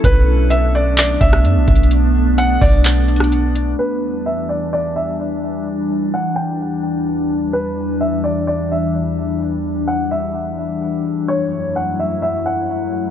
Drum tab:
HH |x-----------x-----------x-----x-----x-----x-x-x-|x-----------x-----o-----x-----x-x-x-x-----x-----|------------------------------------------------|------------------------------------------------|
CP |------------------------x-----------------------|------------------------x-----------------------|------------------------------------------------|------------------------------------------------|
SD |---------------------------------r--------------|---------------------------------r--------------|------------------------------------------------|------------------------------------------------|
BD |o-----------------------------o-----------o-----|------------------o-----------------------------|------------------------------------------------|------------------------------------------------|

HH |------------------------------------------------|------------------------------------------------|------------------------------------------------|
CP |------------------------------------------------|------------------------------------------------|------------------------------------------------|
SD |------------------------------------------------|------------------------------------------------|------------------------------------------------|
BD |------------------------------------------------|------------------------------------------------|------------------------------------------------|